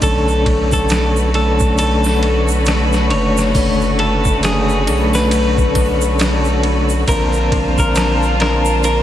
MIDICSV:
0, 0, Header, 1, 6, 480
1, 0, Start_track
1, 0, Tempo, 882353
1, 11, Time_signature, 4, 2, 24, 8
1, 4911, End_track
2, 0, Start_track
2, 0, Title_t, "Clean electric guitar"
2, 0, Program_c, 0, 27
2, 18, Note_on_c, 0, 69, 86
2, 355, Note_off_c, 0, 69, 0
2, 399, Note_on_c, 0, 69, 80
2, 704, Note_off_c, 0, 69, 0
2, 735, Note_on_c, 0, 69, 81
2, 954, Note_off_c, 0, 69, 0
2, 972, Note_on_c, 0, 69, 93
2, 1312, Note_off_c, 0, 69, 0
2, 1692, Note_on_c, 0, 73, 85
2, 2133, Note_off_c, 0, 73, 0
2, 2174, Note_on_c, 0, 69, 88
2, 2393, Note_off_c, 0, 69, 0
2, 2418, Note_on_c, 0, 68, 89
2, 2755, Note_off_c, 0, 68, 0
2, 2801, Note_on_c, 0, 71, 91
2, 3777, Note_off_c, 0, 71, 0
2, 3856, Note_on_c, 0, 70, 92
2, 4194, Note_off_c, 0, 70, 0
2, 4241, Note_on_c, 0, 70, 94
2, 4546, Note_off_c, 0, 70, 0
2, 4577, Note_on_c, 0, 70, 86
2, 4795, Note_off_c, 0, 70, 0
2, 4814, Note_on_c, 0, 70, 92
2, 4911, Note_off_c, 0, 70, 0
2, 4911, End_track
3, 0, Start_track
3, 0, Title_t, "String section"
3, 0, Program_c, 1, 48
3, 9, Note_on_c, 1, 57, 81
3, 9, Note_on_c, 1, 66, 70
3, 9, Note_on_c, 1, 71, 70
3, 3828, Note_off_c, 1, 57, 0
3, 3828, Note_off_c, 1, 66, 0
3, 3828, Note_off_c, 1, 71, 0
3, 3854, Note_on_c, 1, 81, 74
3, 3858, Note_on_c, 1, 65, 77
3, 4911, Note_off_c, 1, 65, 0
3, 4911, Note_off_c, 1, 81, 0
3, 4911, End_track
4, 0, Start_track
4, 0, Title_t, "Tonewheel organ"
4, 0, Program_c, 2, 16
4, 2, Note_on_c, 2, 50, 75
4, 8, Note_on_c, 2, 57, 68
4, 14, Note_on_c, 2, 61, 81
4, 703, Note_off_c, 2, 50, 0
4, 706, Note_off_c, 2, 57, 0
4, 709, Note_off_c, 2, 61, 0
4, 725, Note_on_c, 2, 50, 77
4, 732, Note_on_c, 2, 57, 74
4, 740, Note_on_c, 2, 61, 83
4, 1905, Note_off_c, 2, 50, 0
4, 1908, Note_off_c, 2, 57, 0
4, 1912, Note_off_c, 2, 61, 0
4, 1925, Note_on_c, 2, 50, 76
4, 1930, Note_on_c, 2, 57, 69
4, 1938, Note_on_c, 2, 61, 87
4, 2625, Note_off_c, 2, 50, 0
4, 2627, Note_off_c, 2, 57, 0
4, 2631, Note_off_c, 2, 61, 0
4, 2645, Note_on_c, 2, 50, 84
4, 2650, Note_on_c, 2, 57, 79
4, 2656, Note_on_c, 2, 61, 89
4, 3825, Note_off_c, 2, 50, 0
4, 3827, Note_off_c, 2, 57, 0
4, 3830, Note_off_c, 2, 61, 0
4, 3846, Note_on_c, 2, 50, 79
4, 3851, Note_on_c, 2, 58, 71
4, 3859, Note_on_c, 2, 60, 85
4, 4545, Note_off_c, 2, 50, 0
4, 4548, Note_off_c, 2, 58, 0
4, 4552, Note_off_c, 2, 60, 0
4, 4565, Note_on_c, 2, 50, 81
4, 4571, Note_on_c, 2, 58, 75
4, 4578, Note_on_c, 2, 60, 88
4, 4911, Note_off_c, 2, 50, 0
4, 4911, Note_off_c, 2, 58, 0
4, 4911, Note_off_c, 2, 60, 0
4, 4911, End_track
5, 0, Start_track
5, 0, Title_t, "Analog synth bass"
5, 0, Program_c, 3, 38
5, 11, Note_on_c, 3, 35, 95
5, 1694, Note_on_c, 3, 30, 81
5, 1702, Note_off_c, 3, 35, 0
5, 2654, Note_on_c, 3, 35, 82
5, 2663, Note_off_c, 3, 30, 0
5, 3834, Note_off_c, 3, 35, 0
5, 3851, Note_on_c, 3, 34, 85
5, 4911, Note_off_c, 3, 34, 0
5, 4911, End_track
6, 0, Start_track
6, 0, Title_t, "Drums"
6, 9, Note_on_c, 9, 36, 98
6, 10, Note_on_c, 9, 82, 67
6, 11, Note_on_c, 9, 51, 84
6, 64, Note_off_c, 9, 36, 0
6, 65, Note_off_c, 9, 51, 0
6, 65, Note_off_c, 9, 82, 0
6, 154, Note_on_c, 9, 82, 36
6, 208, Note_off_c, 9, 82, 0
6, 250, Note_on_c, 9, 36, 99
6, 251, Note_on_c, 9, 51, 68
6, 304, Note_off_c, 9, 36, 0
6, 306, Note_off_c, 9, 51, 0
6, 390, Note_on_c, 9, 82, 70
6, 393, Note_on_c, 9, 36, 91
6, 445, Note_off_c, 9, 82, 0
6, 447, Note_off_c, 9, 36, 0
6, 483, Note_on_c, 9, 82, 65
6, 490, Note_on_c, 9, 51, 78
6, 499, Note_on_c, 9, 38, 100
6, 538, Note_off_c, 9, 82, 0
6, 544, Note_off_c, 9, 51, 0
6, 553, Note_off_c, 9, 38, 0
6, 633, Note_on_c, 9, 82, 40
6, 687, Note_off_c, 9, 82, 0
6, 730, Note_on_c, 9, 51, 60
6, 785, Note_off_c, 9, 51, 0
6, 868, Note_on_c, 9, 82, 75
6, 873, Note_on_c, 9, 36, 91
6, 922, Note_off_c, 9, 82, 0
6, 927, Note_off_c, 9, 36, 0
6, 968, Note_on_c, 9, 82, 54
6, 971, Note_on_c, 9, 51, 78
6, 1022, Note_off_c, 9, 82, 0
6, 1026, Note_off_c, 9, 51, 0
6, 1108, Note_on_c, 9, 82, 38
6, 1112, Note_on_c, 9, 81, 61
6, 1123, Note_on_c, 9, 38, 39
6, 1163, Note_off_c, 9, 82, 0
6, 1166, Note_off_c, 9, 81, 0
6, 1177, Note_off_c, 9, 38, 0
6, 1211, Note_on_c, 9, 51, 59
6, 1266, Note_off_c, 9, 51, 0
6, 1350, Note_on_c, 9, 82, 80
6, 1405, Note_off_c, 9, 82, 0
6, 1444, Note_on_c, 9, 82, 58
6, 1450, Note_on_c, 9, 51, 83
6, 1459, Note_on_c, 9, 38, 102
6, 1499, Note_off_c, 9, 82, 0
6, 1504, Note_off_c, 9, 51, 0
6, 1513, Note_off_c, 9, 38, 0
6, 1591, Note_on_c, 9, 82, 37
6, 1601, Note_on_c, 9, 38, 44
6, 1646, Note_off_c, 9, 82, 0
6, 1655, Note_off_c, 9, 38, 0
6, 1689, Note_on_c, 9, 51, 65
6, 1743, Note_off_c, 9, 51, 0
6, 1835, Note_on_c, 9, 82, 71
6, 1843, Note_on_c, 9, 38, 47
6, 1890, Note_off_c, 9, 82, 0
6, 1897, Note_off_c, 9, 38, 0
6, 1930, Note_on_c, 9, 36, 109
6, 1930, Note_on_c, 9, 46, 79
6, 1930, Note_on_c, 9, 82, 55
6, 1984, Note_off_c, 9, 82, 0
6, 1985, Note_off_c, 9, 36, 0
6, 1985, Note_off_c, 9, 46, 0
6, 2074, Note_on_c, 9, 82, 37
6, 2128, Note_off_c, 9, 82, 0
6, 2170, Note_on_c, 9, 51, 63
6, 2225, Note_off_c, 9, 51, 0
6, 2310, Note_on_c, 9, 82, 65
6, 2313, Note_on_c, 9, 36, 91
6, 2365, Note_off_c, 9, 82, 0
6, 2368, Note_off_c, 9, 36, 0
6, 2410, Note_on_c, 9, 51, 77
6, 2413, Note_on_c, 9, 82, 55
6, 2418, Note_on_c, 9, 38, 98
6, 2464, Note_off_c, 9, 51, 0
6, 2467, Note_off_c, 9, 82, 0
6, 2473, Note_off_c, 9, 38, 0
6, 2552, Note_on_c, 9, 82, 34
6, 2607, Note_off_c, 9, 82, 0
6, 2651, Note_on_c, 9, 51, 63
6, 2652, Note_on_c, 9, 81, 56
6, 2706, Note_off_c, 9, 51, 0
6, 2707, Note_off_c, 9, 81, 0
6, 2792, Note_on_c, 9, 81, 53
6, 2797, Note_on_c, 9, 82, 76
6, 2802, Note_on_c, 9, 38, 59
6, 2847, Note_off_c, 9, 81, 0
6, 2851, Note_off_c, 9, 82, 0
6, 2857, Note_off_c, 9, 38, 0
6, 2890, Note_on_c, 9, 51, 87
6, 2893, Note_on_c, 9, 82, 64
6, 2945, Note_off_c, 9, 51, 0
6, 2947, Note_off_c, 9, 82, 0
6, 3034, Note_on_c, 9, 36, 98
6, 3034, Note_on_c, 9, 82, 39
6, 3088, Note_off_c, 9, 36, 0
6, 3089, Note_off_c, 9, 82, 0
6, 3129, Note_on_c, 9, 51, 63
6, 3130, Note_on_c, 9, 36, 90
6, 3130, Note_on_c, 9, 81, 69
6, 3183, Note_off_c, 9, 51, 0
6, 3184, Note_off_c, 9, 81, 0
6, 3185, Note_off_c, 9, 36, 0
6, 3271, Note_on_c, 9, 82, 72
6, 3326, Note_off_c, 9, 82, 0
6, 3366, Note_on_c, 9, 82, 59
6, 3370, Note_on_c, 9, 51, 83
6, 3379, Note_on_c, 9, 38, 107
6, 3421, Note_off_c, 9, 82, 0
6, 3425, Note_off_c, 9, 51, 0
6, 3433, Note_off_c, 9, 38, 0
6, 3506, Note_on_c, 9, 82, 42
6, 3561, Note_off_c, 9, 82, 0
6, 3609, Note_on_c, 9, 51, 64
6, 3663, Note_off_c, 9, 51, 0
6, 3751, Note_on_c, 9, 82, 72
6, 3805, Note_off_c, 9, 82, 0
6, 3849, Note_on_c, 9, 51, 82
6, 3850, Note_on_c, 9, 36, 111
6, 3852, Note_on_c, 9, 82, 58
6, 3904, Note_off_c, 9, 51, 0
6, 3905, Note_off_c, 9, 36, 0
6, 3906, Note_off_c, 9, 82, 0
6, 3987, Note_on_c, 9, 82, 36
6, 4042, Note_off_c, 9, 82, 0
6, 4090, Note_on_c, 9, 36, 92
6, 4091, Note_on_c, 9, 51, 66
6, 4145, Note_off_c, 9, 36, 0
6, 4145, Note_off_c, 9, 51, 0
6, 4232, Note_on_c, 9, 82, 66
6, 4233, Note_on_c, 9, 36, 97
6, 4287, Note_off_c, 9, 36, 0
6, 4287, Note_off_c, 9, 82, 0
6, 4326, Note_on_c, 9, 82, 61
6, 4328, Note_on_c, 9, 51, 78
6, 4337, Note_on_c, 9, 38, 99
6, 4380, Note_off_c, 9, 82, 0
6, 4383, Note_off_c, 9, 51, 0
6, 4392, Note_off_c, 9, 38, 0
6, 4475, Note_on_c, 9, 82, 34
6, 4529, Note_off_c, 9, 82, 0
6, 4570, Note_on_c, 9, 51, 69
6, 4579, Note_on_c, 9, 38, 89
6, 4624, Note_off_c, 9, 51, 0
6, 4633, Note_off_c, 9, 38, 0
6, 4708, Note_on_c, 9, 82, 76
6, 4762, Note_off_c, 9, 82, 0
6, 4806, Note_on_c, 9, 82, 56
6, 4810, Note_on_c, 9, 51, 58
6, 4861, Note_off_c, 9, 82, 0
6, 4864, Note_off_c, 9, 51, 0
6, 4911, End_track
0, 0, End_of_file